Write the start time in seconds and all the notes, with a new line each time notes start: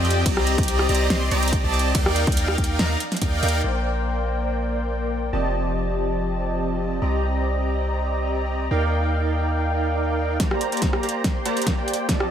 Already playing: F2 F3 C4 G4 D5 D#5 G5
0.05 closed hi-hat
0.10 closed hi-hat
0.26 kick, closed hi-hat, ride
0.37 cross-stick
0.47 closed hi-hat
0.58 C2 D5 D#5, kick, closed hi-hat
0.63 closed hi-hat
0.68 closed hi-hat
0.79 cross-stick
0.89 C2 C4 G4 D5 D#5 A#5, closed hi-hat
0.95 closed hi-hat
1.10 C2 C4 G4 D5 C6, snare, closed hi-hat
1.31 C2 C4 G4 D5 D#5 A#5, closed hi-hat
1.43 closed hi-hat
1.48 closed hi-hat
1.53 kick, closed hi-hat
1.64 C2 C4 G4 D5 D#5 A5
1.74 closed hi-hat
1.79 closed hi-hat
1.95 D#2 D#4 A#4 D5 F5 G5, kick, closed hi-hat, ride
2.06 cross-stick
2.16 closed hi-hat
2.27 D#4 A#4 D5 F5 G5, kick, closed hi-hat
2.32 closed hi-hat
2.37 closed hi-hat
2.48 cross-stick
2.58 D#2 D#4 A#4 D5 F5 G5, kick, closed hi-hat
2.64 closed hi-hat
2.79 D#2 D#4 A#4 D5 F5 A#5, snare, closed hi-hat
3.00 closed hi-hat
3.12 snare, closed hi-hat
3.17 closed hi-hat
3.22 D#2 D#4 A#4 D5 F5 G5, kick, closed hi-hat
3.43 D#2 D#4 A#4 D5 F5 G5, closed hi-hat
3.48 closed hi-hat
3.64 A#1 A#3 A#4 C5 D5 G5
5.33 F1 F3 C4 G4 D5 D#5 A5
7.02 C2 C4 G4 D5 D#5 A#5
8.71 D#2 D#4 A#4 D5 F5 G5
10.40 A#3 G4 C5 D5 A#5, kick, snare, closed hi-hat
10.51 cross-stick
10.61 closed hi-hat
10.72 A#3 G4 C5 D5 A#5, closed hi-hat
10.77 closed hi-hat
10.82 kick, snare, closed hi-hat
10.93 cross-stick
11.03 A#3 G4 C5 D5 A#5, closed hi-hat
11.09 closed hi-hat
11.24 kick, snare, closed hi-hat
11.45 A#3 G4 C5 D5 A#5, closed hi-hat
11.57 closed hi-hat
11.62 closed hi-hat
11.67 kick, snare, closed hi-hat
11.78 A#3 G4 C5 D5 G5
11.88 closed hi-hat
11.93 closed hi-hat
12.09 G4 D5 A5, kick, snare, closed hi-hat
12.20 cross-stick